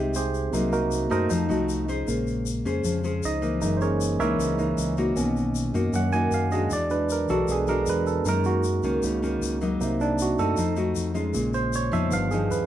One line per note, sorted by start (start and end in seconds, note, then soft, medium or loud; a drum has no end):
0.00 0.49 C2 medium
0.00 0.51 C3 medium
0.00 0.49 G#3 medium
0.00 0.54 G#3 soft
0.00 0.50 D#4 medium
0.00 0.53 D#4 medium
0.00 0.50 G4 medium
0.14 0.69 C4 soft
0.14 0.51 G4 medium
0.14 0.69 G#4 soft
0.14 0.69 C5 medium
0.14 shaker medium
0.34 shaker soft
0.52 1.07 C2 loud
0.52 1.28 C3 medium
0.52 1.07 F#3 soft
0.52 1.07 F#3 medium
0.52 0.71 A#3 soft
0.52 1.08 A#3 medium
0.52 0.72 D#4 soft
0.52 1.08 D#4 medium
0.52 shaker medium
0.73 1.08 A#3 medium
0.73 1.08 D#4 medium
0.73 1.08 F#4 medium
0.73 1.08 A#4 medium
0.73 shaker soft
0.92 shaker medium
1.10 1.29 F#2 medium
1.10 1.46 A3 medium
1.10 1.46 D#4 medium
1.10 1.28 D#4 medium
1.10 1.46 F#4 medium
1.10 1.30 A#4 medium
1.10 1.30 C5 medium
1.10 1.30 D#5 medium
1.10 shaker soft
1.29 1.48 F2 medium
1.29 2.05 F3 medium
1.29 2.03 A3 soft
1.29 2.03 D#4 soft
1.29 shaker medium
1.49 2.04 C2 medium
1.49 1.85 A3 medium
1.49 1.85 D#4 medium
1.49 1.85 F#4 medium
1.49 shaker soft
1.69 shaker medium
1.88 2.44 C#4 medium
1.88 2.45 G#4 medium
1.88 2.45 C5 medium
1.88 shaker soft
2.07 2.61 A#1 medium
2.07 3.58 C#3 soft
2.07 3.58 G#3 soft
2.07 2.82 A#3 medium
2.07 shaker medium
2.27 shaker soft
2.46 shaker medium
2.65 2.83 F2 medium
2.65 3.01 C#4 medium
2.65 3.01 G#4 medium
2.65 3.01 C5 medium
2.65 shaker soft
2.84 3.20 F2 medium
2.84 3.60 F3 medium
2.84 shaker medium
3.04 3.39 C#4 medium
3.04 3.40 G#4 medium
3.04 3.40 C5 medium
3.04 shaker soft
3.23 3.60 C#2 medium
3.23 3.61 D#4 medium
3.23 3.78 D#5 medium
3.23 shaker medium
3.42 4.16 E3 medium
3.42 4.16 A#3 medium
3.42 4.16 D#4 medium
3.42 shaker soft
3.61 4.16 F#1 loud
3.61 4.37 F#2 medium
3.61 4.16 E3 soft
3.61 4.16 G#3 soft
3.61 4.17 A#3 soft
3.61 4.17 D#4 medium
3.61 shaker medium
3.77 3.80 C5 soft
3.81 4.17 C#4 medium
3.81 4.17 G#4 medium
3.81 4.18 A#4 medium
3.81 4.17 C#5 medium
3.81 shaker soft
4.01 shaker medium
4.19 4.37 C#2 medium
4.19 4.37 E3 soft
4.19 4.56 E3 medium
4.19 4.37 G#3 soft
4.19 4.37 A#3 soft
4.19 4.56 A#3 medium
4.19 4.37 D#4 soft
4.19 4.56 D#4 medium
4.19 4.32 E4 medium
4.19 4.32 A#4 medium
4.19 4.32 C#5 medium
4.19 4.31 E5 medium
4.19 shaker soft
4.38 4.75 C#2 medium
4.38 5.14 C#3 medium
4.38 shaker medium
4.58 4.94 E3 medium
4.58 4.94 A#3 medium
4.58 4.94 D#4 medium
4.58 shaker soft
4.78 5.14 C#2 loud
4.78 shaker medium
4.97 5.71 A#3 medium
4.97 5.72 D#4 medium
4.97 5.72 F#4 medium
4.97 shaker soft
5.15 5.70 B1 loud
5.15 5.92 B2 medium
5.15 5.71 D#3 soft
5.15 5.71 A#3 soft
5.15 5.72 C#4 medium
5.15 shaker medium
5.37 shaker soft
5.55 shaker medium
5.74 5.92 F#2 medium
5.74 6.10 A#3 medium
5.74 6.10 D#4 medium
5.74 6.10 F#4 medium
5.74 shaker soft
5.93 6.29 F#2 medium
5.93 6.69 F#2 medium
5.93 6.11 D#3 soft
5.93 6.11 A#3 soft
5.93 6.11 C#4 soft
5.93 6.13 F#5 medium
5.93 shaker medium
6.13 6.48 A#3 medium
6.13 6.48 D#4 medium
6.13 6.49 F#4 medium
6.13 6.31 G#5 medium
6.13 shaker soft
6.31 6.68 F#2 loud
6.31 6.52 F5 medium
6.31 shaker medium
6.51 7.26 G#3 medium
6.51 7.26 D4 medium
6.51 7.26 F#4 medium
6.51 6.70 D#5 medium
6.51 shaker soft
6.70 7.25 E2 loud
6.70 7.46 E3 medium
6.70 6.91 D5 medium
6.70 shaker medium
6.90 7.86 F#3 soft
6.90 7.86 G#3 soft
6.90 7.86 D4 soft
6.90 7.09 B4 medium
6.90 shaker soft
7.09 7.29 A#4 medium
7.09 shaker medium
7.28 7.47 B1 medium
7.28 7.64 G#3 medium
7.28 7.65 D4 medium
7.28 7.65 F#4 medium
7.28 7.48 A4 medium
7.28 shaker soft
7.48 7.84 B1 medium
7.48 8.24 B2 medium
7.48 7.69 G#4 medium
7.48 shaker medium
7.67 8.23 G#3 medium
7.67 8.23 D4 medium
7.67 8.23 F#4 medium
7.67 7.87 A#4 medium
7.67 shaker soft
7.86 8.23 E2 medium
7.86 8.04 F#3 soft
7.86 8.04 G#3 soft
7.86 8.05 D4 soft
7.86 8.07 B4 medium
7.86 shaker medium
8.07 8.25 A4 medium
8.07 shaker soft
8.25 8.79 F#2 loud
8.25 9.01 F#2 medium
8.25 8.64 D#3 medium
8.25 9.02 G#3 soft
8.25 9.02 A#3 soft
8.25 8.64 A#3 soft
8.25 8.64 C#4 medium
8.25 9.03 D#4 soft
8.25 8.46 A#4 medium
8.25 shaker medium
8.44 8.57 F#4 medium
8.44 shaker soft
8.63 shaker medium
8.83 9.01 C#2 medium
8.83 9.19 D#3 medium
8.83 9.19 A#3 medium
8.83 9.19 C#4 medium
8.83 shaker soft
9.03 9.39 C#2 medium
9.03 9.79 C#3 medium
9.03 9.20 G#3 soft
9.03 9.20 A#3 soft
9.03 9.21 D#4 soft
9.03 shaker medium
9.22 9.58 D#3 medium
9.22 9.58 A#3 medium
9.22 9.58 C#4 medium
9.22 shaker soft
9.41 9.77 C#2 medium
9.41 shaker medium
9.61 10.35 F#3 medium
9.61 10.35 A#3 medium
9.61 10.36 D#4 medium
9.61 shaker soft
9.80 10.34 C2 loud
9.80 10.56 C3 medium
9.80 10.35 F#3 soft
9.80 10.35 A#3 soft
9.80 10.36 D#4 medium
9.80 shaker medium
10.01 10.19 D4 medium
10.01 shaker soft
10.19 10.39 F#4 medium
10.19 shaker medium
10.39 10.56 F#2 medium
10.39 10.74 A3 medium
10.39 10.74 D#4 medium
10.39 10.74 F#4 medium
10.39 10.75 A4 medium
10.39 shaker soft
10.57 10.94 F2 medium
10.57 11.33 F3 medium
10.57 10.83 A3 soft
10.57 10.84 D#4 soft
10.57 shaker medium
10.76 11.12 A3 medium
10.76 11.12 D#4 medium
10.76 11.13 F#4 medium
10.76 shaker soft
10.96 11.32 F2 loud
10.96 shaker medium
11.14 11.89 G#3 medium
11.14 11.89 C#4 medium
11.14 11.89 F4 medium
11.14 shaker soft
11.34 11.89 A#1 loud
11.34 12.09 A#2 medium
11.34 11.89 C#3 soft
11.34 11.90 G#3 soft
11.34 shaker medium
11.54 11.73 C5 medium
11.54 shaker soft
11.73 11.93 C#5 medium
11.73 shaker medium
11.92 12.11 F2 medium
11.92 12.28 F3 medium
11.92 12.28 B3 medium
11.92 12.28 D#4 medium
11.92 12.12 E5 medium
11.92 shaker soft
12.10 12.48 G1 medium
12.10 12.66 G2 medium
12.10 12.66 D#3 soft
12.10 12.66 F3 soft
12.10 12.66 B3 soft
12.10 12.31 F5 medium
12.10 shaker medium
12.31 12.66 F3 medium
12.31 12.66 B3 medium
12.31 12.66 D#4 medium
12.31 12.50 G#4 medium
12.31 shaker soft
12.50 12.66 D#2 medium
12.50 12.66 B4 medium
12.50 shaker medium